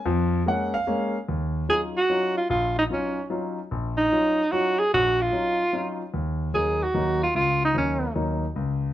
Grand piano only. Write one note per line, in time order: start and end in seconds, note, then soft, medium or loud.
0.06 0.41 F2 medium
0.06 0.41 F3 medium
0.46 0.74 G#3 medium
0.46 0.74 A#3 soft
0.46 0.75 C#4 medium
0.46 0.73 F#5 medium
0.74 1.18 F5 medium
0.87 1.15 G#3 medium
0.87 1.15 A#3 medium
0.87 1.15 C#4 medium
1.29 1.63 D#2 medium
1.69 1.96 F#3 soft
1.69 1.96 C#4 soft
1.69 1.96 D#4 soft
1.69 1.97 F4 soft
2.09 2.37 F#3 soft
2.09 2.37 C#4 soft
2.09 2.37 D#4 soft
2.09 2.37 F4 medium
2.50 2.84 A#1 medium
2.90 3.18 F#3 soft
2.90 3.18 C#4 soft
2.90 3.18 D#4 soft
2.90 3.18 F4 medium
3.30 3.58 F#3 medium
3.30 3.58 C#4 soft
3.30 3.58 D#4 soft
3.30 3.58 F4 medium
3.71 4.06 A#1 medium
4.12 4.40 F#3 soft
4.12 4.40 C#4 soft
4.12 4.40 D#4 soft
4.12 4.40 F4 medium
4.52 4.80 F#3 medium
4.52 4.80 C#4 soft
4.52 4.80 D#4 soft
4.52 4.80 F4 medium
4.94 5.28 A#1 medium
5.32 5.60 F#3 soft
5.32 5.60 C#4 soft
5.32 5.61 D#4 soft
5.32 5.61 F4 soft
5.73 6.01 F#3 soft
5.73 6.01 C#4 soft
5.73 6.01 D#4 soft
5.73 6.01 F4 medium
6.14 6.49 D#2 medium
6.54 6.82 D#2 soft
6.54 6.82 F#3 soft
6.54 6.82 A#3 soft
6.54 6.82 D#4 soft
6.94 7.22 D#2 medium
6.94 7.22 F#3 soft
6.94 7.22 A#3 soft
6.94 7.23 D#4 medium
7.35 7.70 C#2 medium
7.74 8.03 D#2 soft
7.74 8.03 F#3 soft
7.74 8.04 A#3 soft
7.74 8.04 D#4 soft
8.15 8.44 D#2 soft
8.15 8.44 F#3 soft
8.15 8.44 A#3 soft
8.15 8.44 D#4 medium
8.56 8.91 C#2 medium